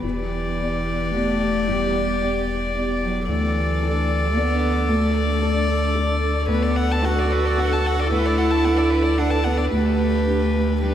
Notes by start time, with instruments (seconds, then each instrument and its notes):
0.03 sub bass E1, felt piano E2, cello E3, ambient pad B3 G4 D5, viola G4, violin D5
0.59 felt piano B3 G4 D5
1.11 cello A3, felt piano B3 G4 D5
1.66 felt piano E2, cello G3
2.20 felt piano B3 G4 D5
2.74 felt piano B3 G4 D5
3.01 cello F#3
3.28 felt piano D2, sub bass D2, cello E3, ambient pad D4 A4 D5, viola A4, violin D5
3.82 felt piano D4 A4 D5
4.36 cello B3, felt piano D4 A4 D5
4.88 felt piano D2, cello A3
5.41 felt piano D4 A4 D5
5.94 felt piano D4 A4 D5
6.47 felt piano D2, sub bass D2, cello B3, ambient pad D4 A4 B4, viola A4, violin B4
6.63 violin D5
6.76 violin F#5
6.92 violin A5
7.03 felt piano D4 A4 B4, cello F#4, violin F#5
7.19 violin D5
7.33 violin B4
7.46 violin D5
7.56 felt piano D4 A4 B4, violin F#5
7.73 violin A5
7.87 violin F#5
8.00 violin D5
8.10 felt piano D2, cello E4, violin B4
8.26 violin D5
8.38 violin F#5
8.51 violin A5
8.64 felt piano D4 A4 B4, violin F#5
8.78 violin D5
8.90 violin B4
9.03 violin D5
9.18 felt piano D4 A4 B4, cello D4, violin F#5
9.31 violin A5
9.44 cello B3, violin F#5
9.57 violin D5
9.72 felt piano D2, sub bass D2, cello A3, ambient pad D4 G4 B4, viola G4, violin B4
10.26 felt piano D4 G4 B4
10.81 cello G3, felt piano D4 G4 B4, viola G4, violin B4